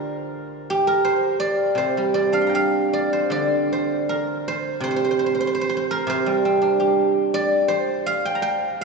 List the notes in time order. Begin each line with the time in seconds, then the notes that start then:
Already playing: D3 D4 F4 G4 A#4 C5 D5 F5
0.70 G4
0.87 A#4
1.05 C5
1.40 D5
1.75 C3 C5
1.97 G3
2.14 C4 D5
2.32 D4 F5
2.42 C6
2.47 G5 A#5
2.54 G4 F5
2.93 D5
3.13 C5
3.30 D3 D5
3.73 C5
4.09 A#4
4.48 C5
4.80 C3 C5
4.91 C5
4.96 C5
5.04 C5
5.11 C5
5.19 C5
5.26 C5
5.35 C5
5.40 C5
5.47 C5
5.55 C5
5.61 C5
5.69 C5
5.77 C5
5.91 A#4
6.07 C3 C5
6.26 G3
6.45 C4
6.53 C#5
6.62 D4 C5
6.80 G4
7.34 D5
7.68 C5
8.06 F5
8.25 G5
8.35 A#5
8.42 G5